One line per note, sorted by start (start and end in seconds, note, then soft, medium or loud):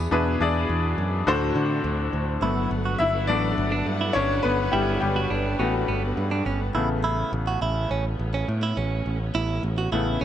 0.00 0.11 D4 medium
0.00 0.12 E4 medium
0.00 0.12 G#4 medium
0.00 0.12 B4 medium
0.11 0.35 E2 medium
0.11 0.94 B2 medium
0.11 1.26 E3 medium
0.11 1.26 B3 medium
0.11 0.33 D4 medium
0.11 1.26 D4 medium
0.11 0.34 E4 medium
0.11 2.40 F#4 medium
0.11 0.34 G#4 medium
0.11 1.26 G#4 medium
0.11 0.34 B4 medium
0.40 0.64 E2 medium
0.40 1.25 D4 medium
0.40 1.27 E4 medium
0.40 1.28 G#4 medium
0.40 1.28 D5 medium
0.69 0.93 E2 medium
0.98 1.22 F#2 medium
1.27 1.51 D2 medium
1.27 2.10 A2 medium
1.27 2.41 D3 medium
1.27 2.41 A3 medium
1.27 2.41 C4 medium
1.27 2.19 D4 medium
1.27 2.41 E4 medium
1.27 2.19 F#4 medium
1.27 2.20 A4 medium
1.27 2.20 C5 medium
1.55 1.79 D3 medium
1.84 2.08 D2 medium
2.13 2.37 D2 medium
2.42 2.66 G1 medium
2.42 2.81 F#3 soft
2.42 2.81 A3 soft
2.42 6.71 B3 medium
2.42 2.81 B3 soft
2.42 6.71 D4 medium
2.42 2.70 E4 medium
2.42 6.71 A4 medium
2.42 6.71 B4 medium
2.42 6.71 F#5 medium
2.71 2.95 G1 medium
2.85 2.99 F#4 medium
2.98 3.29 G1 medium
2.98 3.27 E4 medium
2.98 3.29 E5 medium
3.27 3.52 A1 medium
3.27 3.55 F#3 soft
3.27 3.55 A3 soft
3.27 3.55 B3 soft
3.27 3.43 D4 medium
3.27 3.83 D4 medium
3.27 3.82 D5 medium
3.58 3.81 G1 medium
3.72 3.86 D4 medium
3.86 4.10 G2 medium
4.01 4.15 E4 medium
4.13 4.39 G1 medium
4.13 4.43 C#4 medium
4.13 4.56 D4 medium
4.13 4.44 C#5 medium
4.43 4.68 G1 medium
4.43 4.72 B3 medium
4.43 4.73 B4 medium
4.71 4.97 G1 medium
4.71 5.00 G3 medium
4.71 5.00 E4 medium
4.71 4.99 G4 medium
5.01 5.25 G1 medium
5.01 6.71 G3 medium
5.01 6.70 G4 medium
5.16 5.30 F#4 medium
5.30 5.54 G1 medium
5.30 5.58 D4 medium
5.59 5.83 A1 medium
5.59 6.71 A3 soft
5.59 6.71 B3 medium
5.59 5.73 C#4 medium
5.59 6.71 F#4 medium
5.88 6.12 G1 medium
5.88 6.02 B3 medium
6.17 6.41 G2 medium
6.31 6.45 D4 medium
6.46 6.70 G1 medium
6.46 6.60 C#4 medium
6.74 7.22 A1 medium
6.74 7.57 C#3 soft
6.74 7.58 A3 soft
6.74 10.25 A3 medium
6.74 10.25 B3 medium
6.74 7.58 B3 soft
6.74 10.25 C#4 medium
6.74 6.89 E4 medium
7.04 7.31 E4 medium
7.33 7.56 A1 medium
7.47 7.61 F#4 medium
7.61 7.85 A1 medium
7.61 7.89 E4 medium
7.91 8.14 A1 medium
7.91 8.04 C#4 medium
8.19 8.43 A1 medium
8.34 8.48 C#4 medium
8.48 8.72 A2 medium
8.63 8.76 E4 medium
8.77 9.01 A1 medium
8.77 9.18 C#4 medium
9.06 9.29 A1 medium
9.35 9.58 A1 medium
9.35 9.62 E4 medium
9.63 9.87 A1 medium
9.78 9.92 F#4 medium
9.92 10.16 A1 medium
9.92 10.25 C#3 soft
9.92 10.25 A3 soft
9.92 10.25 B3 medium
9.92 10.20 E4 medium
10.21 10.25 B1 medium
10.21 10.25 C#4 medium